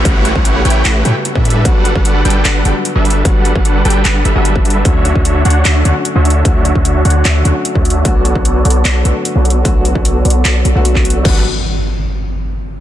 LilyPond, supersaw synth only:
\new Staff \with { instrumentName = "Supersaw synth" } { \time 4/4 \key g \lydian \tempo 4 = 150 <a e' g' fis''>8. <a g' b' fis''>8. <a e' g' b' cis'' g''>8 <a e' g' b' cis'' fis''>8 <a e' g' b' cis'' g''>16 r8 <g d' a' b' e''>8. | <g d' a' b' fis''>8. <g d' a' b' fis''>8. <g d' a' b' g''>8 <g d' a' b' fis''>8 <g d' a' b' g''>16 r8 <g d' a' b' e''>8. | <g d' a' b' fis''>8. <g d' a' fis''>8. <g d' a' b' g''>8 <g d' a' b' fis''>8 <g d' a' b' e''>16 <g d' a' b' e''>4~ <g d' a' b' e''>16 | <d d' fis' cis'' e''>8. <d d' fis' cis'' e''>8. <d d' fis' cis'' fis''>8 <d d' fis' e''>8 <d d' fis' cis'' fis''>16 r8 <d d' fis' cis'' e''>8. |
<d d' fis' cis'' e''>8. <d d' fis' cis''>8. <d d' fis' cis'' fis''>8 <d d' fis' cis'' e''>8 <d d' fis' cis'' fis''>16 r8 <d d' fis' cis'' e''>8. | <b fis' a' cis'' d''>8. <b fis' cis'' d''>8. <b fis' a' cis'' d''>8 <b fis' a' cis'' d''>8 <b fis' a' cis'' d''>16 r8 <b fis' a' cis'' d''>8. | <b fis' a' cis'' d''>8. <b fis' a' cis'' d''>8. <b fis' a' cis'' d''>8 <b fis' a' cis'' d''>8 <b fis' a' cis'' d''>16 <b fis' a' cis'' d''>4~ <b fis' a' cis'' d''>16 | <g d' a' b' fis''>8 r2. r8 | }